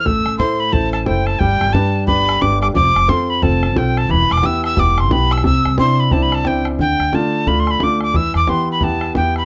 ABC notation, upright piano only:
X:1
M:4/4
L:1/8
Q:"Swing" 1/4=178
K:Am
V:1 name="Upright piano"
A,2 [EAc]2 [EAc]2 [EAc]2 | G,2 [DGB]2 [DGB]2 [DGB]2 | F,2 [CFA]2 [CFA]2 [CFA]2 | E,2 [B,EG]2 [B,EG]2 [B,EG]2 |
C,2 [CDE]2 [CDE]2 [CDE]2 | D,2 [A,DF]2 [A,DF]2 [A,DF]2 | E,2 [B,EG]2 [B,EG]2 [B,EG]2 |]